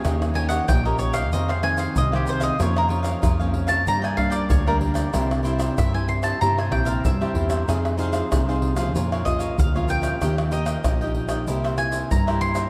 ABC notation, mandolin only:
X:1
M:4/4
L:1/16
Q:1/4=94
K:Fm
V:1 name="Mandolin"
z2 a _g =g B d f e f a f e G c e | d B z4 z =a b _a f =d _d B z2 | z4 =e a c' =a b _a g f e4 | z8 z2 e2 f2 g2- |
g2 e6 z2 a2 b2 c'2 |]